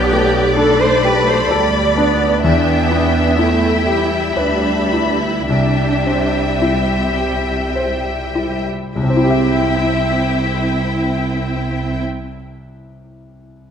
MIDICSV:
0, 0, Header, 1, 7, 480
1, 0, Start_track
1, 0, Key_signature, 0, "major"
1, 0, Tempo, 927357
1, 1263, Time_signature, 3, 2, 24, 8
1, 1747, Tempo, 1000000
1, 2227, Tempo, 1127820
1, 3667, Tempo, 1176471
1, 6094, End_track
2, 0, Start_track
2, 0, Title_t, "Violin section"
2, 0, Program_c, 0, 48
2, 0, Note_on_c, 0, 79, 50
2, 301, Note_off_c, 0, 79, 0
2, 304, Note_on_c, 0, 83, 52
2, 1264, Note_on_c, 0, 79, 45
2, 1266, Note_off_c, 0, 83, 0
2, 1739, Note_off_c, 0, 79, 0
2, 1747, Note_on_c, 0, 79, 45
2, 2218, Note_off_c, 0, 79, 0
2, 2229, Note_on_c, 0, 83, 41
2, 2699, Note_on_c, 0, 79, 41
2, 2701, Note_off_c, 0, 83, 0
2, 4036, Note_off_c, 0, 79, 0
2, 4159, Note_on_c, 0, 79, 44
2, 5404, Note_off_c, 0, 79, 0
2, 6094, End_track
3, 0, Start_track
3, 0, Title_t, "Violin section"
3, 0, Program_c, 1, 48
3, 0, Note_on_c, 1, 74, 57
3, 1266, Note_off_c, 1, 74, 0
3, 1268, Note_on_c, 1, 76, 49
3, 2685, Note_off_c, 1, 76, 0
3, 2700, Note_on_c, 1, 76, 43
3, 4036, Note_off_c, 1, 76, 0
3, 4161, Note_on_c, 1, 76, 45
3, 5406, Note_off_c, 1, 76, 0
3, 6094, End_track
4, 0, Start_track
4, 0, Title_t, "Cello section"
4, 0, Program_c, 2, 48
4, 0, Note_on_c, 2, 67, 65
4, 297, Note_on_c, 2, 69, 74
4, 298, Note_off_c, 2, 67, 0
4, 414, Note_off_c, 2, 69, 0
4, 422, Note_on_c, 2, 72, 67
4, 538, Note_on_c, 2, 71, 68
4, 539, Note_off_c, 2, 72, 0
4, 658, Note_off_c, 2, 71, 0
4, 661, Note_on_c, 2, 72, 66
4, 778, Note_on_c, 2, 74, 67
4, 781, Note_off_c, 2, 72, 0
4, 1262, Note_on_c, 2, 62, 70
4, 1263, Note_off_c, 2, 74, 0
4, 1738, Note_off_c, 2, 62, 0
4, 1746, Note_on_c, 2, 64, 55
4, 2227, Note_off_c, 2, 64, 0
4, 2227, Note_on_c, 2, 62, 53
4, 2579, Note_off_c, 2, 62, 0
4, 2580, Note_on_c, 2, 64, 49
4, 2698, Note_on_c, 2, 62, 60
4, 2700, Note_off_c, 2, 64, 0
4, 3170, Note_off_c, 2, 62, 0
4, 3178, Note_on_c, 2, 60, 45
4, 3667, Note_off_c, 2, 60, 0
4, 4154, Note_on_c, 2, 60, 52
4, 5399, Note_off_c, 2, 60, 0
4, 6094, End_track
5, 0, Start_track
5, 0, Title_t, "Grand piano"
5, 0, Program_c, 3, 0
5, 0, Control_c, 3, 64, 127
5, 0, Note_on_c, 3, 35, 52
5, 63, Note_on_c, 3, 57, 40
5, 294, Note_on_c, 3, 62, 42
5, 441, Note_off_c, 3, 57, 0
5, 542, Note_on_c, 3, 67, 40
5, 679, Note_off_c, 3, 62, 0
5, 780, Note_on_c, 3, 69, 42
5, 927, Note_off_c, 3, 67, 0
5, 1022, Note_on_c, 3, 62, 39
5, 1168, Note_off_c, 3, 69, 0
5, 1243, Note_off_c, 3, 35, 0
5, 1264, Note_off_c, 3, 62, 0
5, 1264, Note_on_c, 3, 40, 48
5, 1272, Control_c, 3, 64, 0
5, 1356, Control_c, 3, 64, 127
5, 1508, Note_on_c, 3, 59, 36
5, 1751, Note_on_c, 3, 64, 38
5, 1889, Note_off_c, 3, 59, 0
5, 1980, Note_on_c, 3, 67, 36
5, 2129, Note_off_c, 3, 64, 0
5, 2209, Note_off_c, 3, 40, 0
5, 2223, Note_on_c, 3, 71, 36
5, 2365, Note_off_c, 3, 67, 0
5, 2463, Note_on_c, 3, 64, 33
5, 2601, Note_off_c, 3, 71, 0
5, 2700, Note_on_c, 3, 36, 38
5, 2701, Note_off_c, 3, 64, 0
5, 2710, Control_c, 3, 64, 0
5, 2803, Control_c, 3, 64, 127
5, 2942, Note_on_c, 3, 60, 29
5, 3181, Note_on_c, 3, 64, 33
5, 3326, Note_off_c, 3, 60, 0
5, 3419, Note_on_c, 3, 67, 32
5, 3569, Note_off_c, 3, 64, 0
5, 3666, Note_on_c, 3, 72, 31
5, 3812, Note_off_c, 3, 67, 0
5, 3909, Note_on_c, 3, 64, 31
5, 4060, Note_off_c, 3, 72, 0
5, 4141, Note_off_c, 3, 36, 0
5, 4155, Note_off_c, 3, 64, 0
5, 4156, Note_on_c, 3, 36, 37
5, 4166, Control_c, 3, 64, 0
5, 4185, Note_on_c, 3, 48, 37
5, 4211, Note_on_c, 3, 60, 38
5, 4240, Note_on_c, 3, 64, 36
5, 4258, Control_c, 3, 64, 127
5, 4268, Note_on_c, 3, 67, 37
5, 4298, Note_on_c, 3, 76, 37
5, 5401, Note_off_c, 3, 36, 0
5, 5430, Note_off_c, 3, 48, 0
5, 5457, Note_off_c, 3, 60, 0
5, 5486, Note_off_c, 3, 64, 0
5, 5513, Note_off_c, 3, 67, 0
5, 5543, Note_off_c, 3, 76, 0
5, 6094, End_track
6, 0, Start_track
6, 0, Title_t, "Viola section"
6, 0, Program_c, 4, 48
6, 0, Note_on_c, 4, 59, 54
6, 300, Note_off_c, 4, 59, 0
6, 304, Note_on_c, 4, 57, 51
6, 771, Note_off_c, 4, 57, 0
6, 776, Note_on_c, 4, 55, 51
6, 1020, Note_off_c, 4, 55, 0
6, 1021, Note_on_c, 4, 59, 51
6, 1256, Note_off_c, 4, 59, 0
6, 1262, Note_on_c, 4, 59, 47
6, 1738, Note_off_c, 4, 59, 0
6, 1746, Note_on_c, 4, 57, 49
6, 1978, Note_on_c, 4, 55, 46
6, 1980, Note_off_c, 4, 57, 0
6, 2696, Note_off_c, 4, 55, 0
6, 2701, Note_on_c, 4, 55, 44
6, 4037, Note_off_c, 4, 55, 0
6, 4160, Note_on_c, 4, 64, 49
6, 5405, Note_off_c, 4, 64, 0
6, 6094, End_track
7, 0, Start_track
7, 0, Title_t, "Double bass section"
7, 0, Program_c, 5, 48
7, 0, Note_on_c, 5, 35, 54
7, 761, Note_off_c, 5, 35, 0
7, 779, Note_on_c, 5, 38, 44
7, 1254, Note_off_c, 5, 38, 0
7, 1262, Note_on_c, 5, 40, 51
7, 2225, Note_on_c, 5, 38, 37
7, 2227, Note_off_c, 5, 40, 0
7, 2689, Note_off_c, 5, 38, 0
7, 2697, Note_on_c, 5, 36, 42
7, 4052, Note_off_c, 5, 36, 0
7, 4152, Note_on_c, 5, 36, 47
7, 5397, Note_off_c, 5, 36, 0
7, 6094, End_track
0, 0, End_of_file